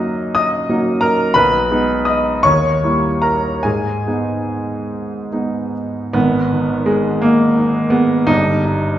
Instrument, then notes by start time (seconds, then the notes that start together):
grand piano
Already playing: F#2 F#3 A#3 D#4 D#5 D#6
0.35 D#5 D#6
0.69 F#3 A#3 D#4
1.01 A#4 A#5
1.34 B1 B4 B5
1.71 G#3 B3 D#4
2.05 D#5 D#6
2.43 D#2 C#5 C#6
2.83 G3 A#3 E4
3.22 A#4 A#5
3.63 G#2 G#4 G#5
4.07 G#3 B3 D#4
5.32 G#3 B3 D#4
6.13 G#1 G#2 B3
6.53 D#3
6.86 G#3 G#4
7.22 A#3 D#5
7.58 D#4
7.90 B3 G#4
8.27 G1 G2 D#4
8.65 D#4